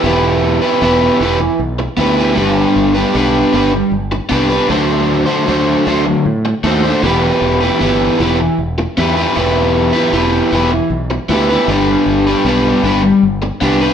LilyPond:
<<
  \new Staff \with { instrumentName = "Overdriven electric guitar" } { \time 3/4 \key e \minor \tempo 4 = 77 <e b e' g' b'>8. <e' g' b'>16 <e b e' g' b'>8 <b e' g' b'>8. r16 <b e' g' b'>16 <e' g' b'>16 | <g b d' g' b'>8. <d' g' b'>16 <g b d' g' b'>8 <b d' g' b'>8. r16 <b d' g' b'>16 <d' g' b'>16 | <d fis a d' fis' c''>8. <a d' fis' c''>16 <d fis a d' fis' c''>8 <a d' fis' c''>8. r16 <a d' fis' c''>16 <a d' fis' c''>16 | <e b e' g' b'>8. <e' g' b'>16 <e b e' g' b'>8 <b e' g' b'>8. r16 <b e' g' b'>16 <e' g' b'>16 |
<e b e' g' b'>8. <e' g' b'>16 <e b e' g' b'>8 <b e' g' b'>8. r16 <b e' g' b'>16 <e' g' b'>16 | <g b d' g' b'>8. <d' g' b'>16 <g b d' g' b'>8 <b d' g' b'>8. r16 <b d' g' b'>16 <d' g' b'>16 | }
  \new Staff \with { instrumentName = "Fingered electric bass" } { \clef bass \time 3/4 \key e \minor e,,4 e,,8 e,,8 b,,8 d,8 | g,,8 g,,8 b,,8 g,,8 g,,8 c,8 | d,4 d,8 d,8 a,8 dis,8 | e,,8 e,,8 g,,8 e,,8 e,,8 e,8 |
e,,4 e,,8 e,,8 b,,8 d,8 | g,,8 g,,8 b,,8 g,,8 g,,8 c,8 | }
>>